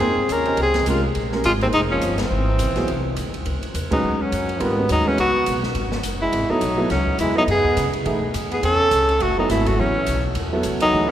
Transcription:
Already playing: trombone C4, tenor saxophone G#4
0.00 upright bass F2, grand piano A#3 D#4 G#4 C5
0.17 muted upright bass stroke
0.29 upright bass D#2, trombone C#4, tenor saxophone A#4, hi-hat pedal, ride
0.45 grand piano C#4 G4 C5 D#5, ride
0.57 upright bass C#2, trombone C4, ride
0.62 tenor saxophone G#4
0.74 snare, ride
0.86 upright bass C2, grand piano G#3 C#4 G4 A#4, trombone G#3, tenor saxophone F4, hi-hat pedal, ride
1.15 upright bass A#1, ride
1.32 grand piano G#3 C#4 G4 A#4, snare
1.44 upright bass G#1, trombone G#3, tenor saxophone F4, hi-hat pedal, ride
1.61 trombone D#3, grand piano A#3 D#4 G#4 C5, tenor saxophone C4, ride
1.73 upright bass F1, trombone G#3, tenor saxophone D#4, ride
1.91 trombone F3, tenor saxophone C#4
2.01 upright bass G1, hi-hat pedal, ride
2.18 trombone E3, tenor saxophone C4, snare, ride
2.31 upright bass G#1
2.59 upright bass B1, hi-hat pedal, ride
2.76 grand piano F#3 B3 E4 G#4, snare, ride
2.88 upright bass C2, ride
3.16 upright bass D2, hi-hat pedal, ride
3.34 ride
3.46 upright bass C#2, ride
3.63 ride
3.74 upright bass E2, hi-hat pedal, ride
3.90 trombone F#3, grand piano G#3 C#4 F#4 B4, tenor saxophone D#4, muted upright bass stroke, kick, ride
4.03 upright bass D#2
4.19 trombone F#3, tenor saxophone C#4
4.32 upright bass F#2, hi-hat pedal, ride
4.49 ride
4.60 upright bass G#2, trombone D#3, grand piano G3 C4 F4 A#4, tenor saxophone B3, ride
4.77 grand piano G#3 C#4 F#4 B4
4.89 upright bass D#2, trombone F#3, tenor saxophone D#4, hi-hat pedal, ride
5.06 trombone E3, grand piano G#3 C#4 F#4 B4, tenor saxophone C#4
5.18 upright bass C#2, trombone B3, tenor saxophone F#4, ride
5.46 upright bass B1, hi-hat pedal, ride
5.63 snare
5.75 upright bass G#1, ride
5.92 snare
6.03 upright bass F#1, hi-hat pedal, ride
6.21 trombone G#3, tenor saxophone E4
6.33 upright bass G#1, ride
6.49 grand piano F#3 B3 E4 A4, trombone F#3, tenor saxophone D#4, muted upright bass stroke
6.61 upright bass B1, hi-hat pedal, ride
6.77 grand piano F#3 B3 E4 A4
6.90 upright bass C#2, trombone F#3, tenor saxophone C#4, snare, ride
7.07 kick
7.18 upright bass E2, trombone G#3, tenor saxophone E4, hi-hat pedal, ride
7.35 trombone F#3, grand piano B3 E4 A4 D#5, tenor saxophone D#4
7.47 upright bass F#2, trombone B3, tenor saxophone G#4, ride
7.65 kick
7.77 upright bass C#3, hi-hat pedal, ride
7.93 ride
8.05 upright bass B2, grand piano E3 A3 D#4 G#4, ride
8.34 upright bass F#2, hi-hat pedal, ride
8.51 trombone B3, tenor saxophone G#4, ride
8.63 upright bass E2, trombone C#4, tenor saxophone A4, ride
8.91 upright bass C#2, hi-hat pedal, ride
9.09 ride
9.20 upright bass F#1, trombone A3, tenor saxophone F#4, ride
9.38 trombone F#3, grand piano F#3 B3 E4 A4, tenor saxophone D#4
9.49 upright bass G#1, trombone A3, tenor saxophone E4, snare, hi-hat pedal, ride
9.66 trombone A3, tenor saxophone F#4, kick, ride
9.78 upright bass A1, trombone E3, grand piano F#3 B3 E4 F#4, tenor saxophone C#4
10.06 upright bass B1, hi-hat pedal, ride
10.35 upright bass E2, ride
10.53 grand piano F#3 B3 E4 A4
10.63 upright bass C#2, hi-hat pedal, ride
10.80 trombone F#3, tenor saxophone D#4, ride
10.93 upright bass D#2, grand piano E3 A3 D#4 G#4
11.06 trombone D#3, tenor saxophone B3

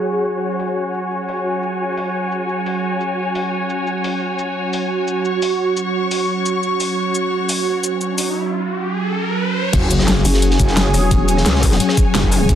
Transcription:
Already playing: analog synth pad F#3 C#4 G#4, string section F#4 C#5 G#5
0.25 cabasa
0.60 open hi-hat, cabasa
0.94 cabasa
1.11 cabasa
1.29 open hi-hat, cabasa
1.63 cabasa
1.97 open hi-hat, cabasa
2.32 cabasa
2.49 cabasa
2.66 open hi-hat, cabasa
3.01 cabasa
3.35 open hi-hat, cabasa
3.70 cabasa
3.87 cabasa
4.04 open hi-hat, cabasa
4.22 analog synth pad F#4
4.39 cabasa
4.73 open hi-hat, cabasa
5.08 cabasa
5.25 string section C#6, cabasa
5.42 open hi-hat, cabasa
5.77 cabasa
6.11 open hi-hat, cabasa
6.46 cabasa
6.63 cabasa
6.80 open hi-hat, cabasa
6.98 riser
7.15 cabasa
7.49 open hi-hat, cabasa
7.84 cabasa
8.01 cabasa
8.18 open hi-hat, cabasa
9.73 wobble bass F#1, analog synth pad F#3 C#4 G#4, string section F#4, kick, closed hi-hat, crash, sub drop
9.91 closed hi-hat, open hi-hat, cabasa
9.96 string section G#5, cross-stick, snare
10.06 string section C#5, snare, closed hi-hat
10.25 wobble bass F#1, closed hi-hat, open hi-hat, cabasa
10.34 snare
10.42 closed hi-hat
10.51 snare
10.60 wobble bass F#1, kick, closed hi-hat, cabasa
10.68 snare
10.77 snare, closed hi-hat, cabasa
10.94 wobble bass E1, cross-stick, closed hi-hat, open hi-hat, cabasa
11.11 kick, closed hi-hat
11.28 closed hi-hat, cabasa
11.37 cross-stick, snare
11.45 wobble bass C#2, snare, closed hi-hat
11.55 snare
11.63 kick, closed hi-hat, open hi-hat, cabasa
11.72 snare
11.80 closed hi-hat
11.89 cross-stick, snare
11.97 kick, closed hi-hat, cabasa
12.15 wobble bass F#1, snare, closed hi-hat, cabasa
12.23 kick
12.32 closed hi-hat, open hi-hat, cabasa
12.49 wobble bass F#1, kick, closed hi-hat

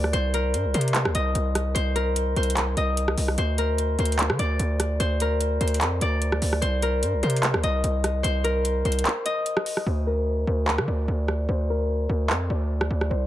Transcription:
Already playing: 808-style bass D2, harp A#4 C5 D5
0.04 cross-stick
0.13 808-style bass C2, harp C5, closed hi-hat
0.34 harp A#4, closed hi-hat
0.54 808-style bass G2, closed hi-hat
0.65 808-style bass C2
0.74 808-style bass C3, harp C5, closed hi-hat
0.81 closed hi-hat
0.88 closed hi-hat
0.94 clap, closed hi-hat
1.05 808-style bass D2, cross-stick
1.15 808-style bass C2, harp D#5, closed hi-hat
1.35 808-style bass C2, closed hi-hat
1.55 cross-stick, closed hi-hat
1.75 808-style bass C2, harp C5, closed hi-hat
1.96 harp A#4, closed hi-hat
2.16 closed hi-hat
2.36 808-style bass C2, harp C5, closed hi-hat
2.43 closed hi-hat
2.50 closed hi-hat
2.57 clap, closed hi-hat
2.77 808-style bass C2, harp D#5, closed hi-hat
2.97 closed hi-hat
3.08 cross-stick
3.18 808-style bass C2, open hi-hat
3.28 cross-stick
3.38 808-style bass D2, harp C5, closed hi-hat
3.58 harp A#4, closed hi-hat
3.78 closed hi-hat
3.99 808-style bass D2, harp C5, closed hi-hat
4.05 closed hi-hat
4.12 closed hi-hat
4.19 clap, closed hi-hat
4.30 808-style bass D3, cross-stick
4.39 808-style bass D2, harp D5, closed hi-hat
4.59 808-style bass D2, closed hi-hat
4.80 cross-stick, closed hi-hat
5.00 808-style bass D2, harp C5, closed hi-hat
5.20 harp A#4, closed hi-hat
5.41 closed hi-hat
5.61 808-style bass D2, harp C5, closed hi-hat
5.68 closed hi-hat
5.74 closed hi-hat
5.81 808-style bass F2, clap, closed hi-hat
6.01 808-style bass D2, harp D5, closed hi-hat
6.22 closed hi-hat
6.32 cross-stick
6.42 808-style bass D2, open hi-hat
6.53 cross-stick
6.62 808-style bass C2, harp C5, closed hi-hat
6.82 harp A#4, closed hi-hat
7.03 808-style bass G2, closed hi-hat
7.14 808-style bass C2
7.23 808-style bass C3, harp C5, closed hi-hat
7.30 closed hi-hat
7.36 closed hi-hat
7.43 clap, closed hi-hat
7.54 808-style bass D2, cross-stick
7.63 808-style bass C2, harp D#5, closed hi-hat
7.84 808-style bass C2, closed hi-hat
8.04 cross-stick, closed hi-hat
8.23 808-style bass C2, harp C5, closed hi-hat
8.44 harp A#4, closed hi-hat
8.65 closed hi-hat
8.85 808-style bass C2, harp C5, closed hi-hat
8.92 closed hi-hat
8.99 closed hi-hat
9.05 clap, closed hi-hat
9.26 harp D#5, closed hi-hat
9.46 closed hi-hat
9.57 cross-stick
9.66 open hi-hat
9.77 cross-stick
9.86 808-style bass D2, harp C5
10.07 harp A#4
10.47 808-style bass D2, harp C5
10.68 clap
10.78 808-style bass D3, cross-stick
10.88 808-style bass D2, harp D5
11.08 808-style bass D2
11.28 cross-stick
11.49 808-style bass D2, harp C5
11.70 harp A#4
12.09 808-style bass D2, harp C5
12.30 808-style bass F2, clap
12.50 808-style bass D2, harp D5
12.81 cross-stick
12.91 808-style bass D2
13.01 cross-stick
13.10 808-style bass C2, harp C5

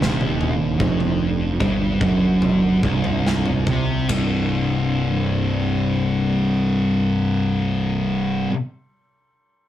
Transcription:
Already playing: synth drone C3 G3 D4
0.00 fingered electric bass D#1, distorted electric guitar D#2, snare
0.21 floor tom
0.41 floor tom
0.79 fingered electric bass F1, distorted electric guitar F2, synth drone F3, kick, floor tom
1.00 floor tom
1.60 fingered electric bass G1, distorted electric guitar G2, kick, floor tom
2.00 fingered electric bass F#1, distorted electric guitar F#2, kick, floor tom
2.42 floor tom
2.83 fingered electric bass C1, distorted electric guitar C2, kick, mid tom
3.04 floor tom
3.26 snare
3.46 floor tom
3.67 fingered electric bass C2, distorted electric guitar C3, kick, floor tom
4.09 fingered electric bass C1, distorted electric guitar C2 G2 C3, synth drone C3 G3 D4, kick, ride bell

